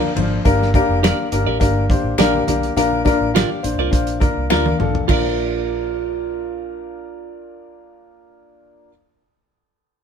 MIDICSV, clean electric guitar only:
0, 0, Header, 1, 2, 480
1, 0, Start_track
1, 0, Key_signature, -2, "major"
1, 0, Tempo, 580833
1, 374, Time_signature, 4, 2, 24, 8
1, 8295, End_track
2, 0, Start_track
2, 0, Title_t, "Clean electric guitar"
2, 0, Program_c, 0, 27
2, 853, Note_on_c, 0, 67, 83
2, 859, Note_on_c, 0, 70, 92
2, 863, Note_on_c, 0, 74, 97
2, 964, Note_off_c, 0, 67, 0
2, 967, Note_off_c, 0, 70, 0
2, 969, Note_off_c, 0, 74, 0
2, 1211, Note_on_c, 0, 74, 55
2, 1217, Note_on_c, 0, 70, 50
2, 1223, Note_on_c, 0, 67, 43
2, 1299, Note_off_c, 0, 74, 0
2, 1302, Note_off_c, 0, 70, 0
2, 1305, Note_off_c, 0, 67, 0
2, 1807, Note_on_c, 0, 67, 83
2, 1812, Note_on_c, 0, 70, 86
2, 1818, Note_on_c, 0, 74, 96
2, 1921, Note_off_c, 0, 67, 0
2, 1923, Note_off_c, 0, 70, 0
2, 1926, Note_off_c, 0, 74, 0
2, 2768, Note_on_c, 0, 65, 76
2, 2773, Note_on_c, 0, 70, 87
2, 2781, Note_on_c, 0, 74, 86
2, 2881, Note_off_c, 0, 65, 0
2, 2884, Note_off_c, 0, 70, 0
2, 2888, Note_off_c, 0, 74, 0
2, 3132, Note_on_c, 0, 74, 64
2, 3140, Note_on_c, 0, 70, 61
2, 3143, Note_on_c, 0, 65, 53
2, 3219, Note_off_c, 0, 74, 0
2, 3223, Note_off_c, 0, 70, 0
2, 3224, Note_off_c, 0, 65, 0
2, 3726, Note_on_c, 0, 65, 81
2, 3733, Note_on_c, 0, 70, 77
2, 3740, Note_on_c, 0, 74, 81
2, 3840, Note_off_c, 0, 65, 0
2, 3844, Note_off_c, 0, 70, 0
2, 3847, Note_off_c, 0, 74, 0
2, 4198, Note_on_c, 0, 65, 80
2, 4222, Note_on_c, 0, 70, 83
2, 4241, Note_on_c, 0, 74, 80
2, 7367, Note_off_c, 0, 65, 0
2, 7378, Note_off_c, 0, 70, 0
2, 7388, Note_off_c, 0, 74, 0
2, 8295, End_track
0, 0, End_of_file